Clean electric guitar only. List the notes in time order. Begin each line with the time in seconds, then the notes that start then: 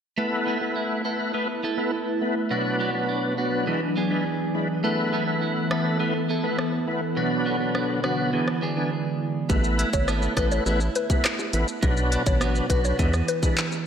0.18 A3 A4
0.47 B3 E4 A4
0.76 E4
1.05 A4
1.34 B3
1.63 B3 E4 A4
2.51 B2 F#4
2.80 B3 D4 F#4
3.09 D4
3.38 F#4
3.67 E3
3.96 B3 D4 G#4
4.84 A3 A4
5.13 B3 E4 A4
5.42 E4
5.71 A4
6.00 B3
6.29 B3 E4 A4
7.17 B2 F#4
7.46 B3 D4 F#4
7.75 D4
8.04 F#4
8.33 E3
8.62 B3 D4 G#4
9.50 A3
9.79 E4
10.08 B3 E4 A4
10.37 A4
10.66 E4
11.83 B2
12.12 D4
12.41 B3 D4 F#4
12.70 F#4
12.99 E3